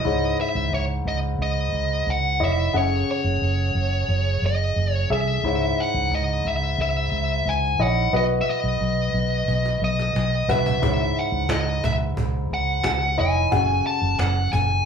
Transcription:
Already playing: D#5
0.05 C#2 G#2 E4 C#5
0.41 E5
0.55 C#2
0.72 C#2 C#5
1.05 C#2 D#5
1.38 C#2 D#5
1.72 C#2
2.07 C#2 F#5
2.40 F1 E4 C#5 D#5
2.44 E5
2.73 F#1 C#3 G#4 A4 C#5 F#5
3.11 C#5
3.24 F#1
3.42 F#1
3.75 F#1
4.08 F#1
4.42 F#1
4.46 D#5
4.76 F#1
4.93 C#5
5.10 C2 G#4 A4 E5
5.43 C#2 G#2 E4 C#5
5.80 F#5
5.94 C#2
6.11 C#2 D#5
6.45 C#2 E5
6.78 C#2 E5
7.12 C#2
7.45 C#2 G#5
7.79 A#1 E4 C#5 D#5 F#5
8.13 B1 F#4 B4 D#5
8.41 E5
8.50 D#5
8.63 B1
8.81 B1
9.14 B1
9.48 B1, cajon slap
9.66 cajon slap
9.82 B1 D#5
9.99 cajon slap
10.15 B1, cajon slap
10.48 C2 F#4 B4 E5 F#5, cajon bass
10.66 cajon bass
10.82 C#2 G#2 E4 C#5, cajon bass
11.17 F#5, cajon slap
11.32 C#2, cajon slap
11.49 C#2 D#5, cajon slap
11.66 cajon slap
11.83 C#2 E5, cajon bass
12.00 cajon slap
12.17 C#2, cajon bass
12.50 C#2 F#5, cajon slap
12.67 cajon slap
12.83 C#2, cajon slap
13.18 F1 E4 C#5 D#5 G#5, cajon slap
13.51 F#1 C#3 F#4 A4 F#5, cajon bass
13.86 A5, cajon slap
14.01 F#1, cajon slap
14.19 F#1 F#5, cajon slap
14.36 cajon slap
14.53 F#1 G#5, cajon bass
14.69 cajon slap

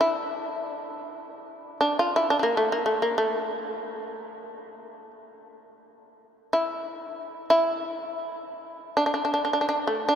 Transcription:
0.01 E4
1.81 D4
1.99 F4
2.16 E4
2.30 D4
2.39 A#3 D4
2.57 A3
2.72 A#3
2.86 A3
3.02 A#3
3.18 A3
6.53 E4
7.00 D#4
7.12 D4
7.50 E4
8.97 D4
9.06 D4
9.14 D4
9.25 D4
9.34 D4
9.45 D4
9.53 D4
9.61 D4
9.69 D4
9.87 A3
10.09 D4

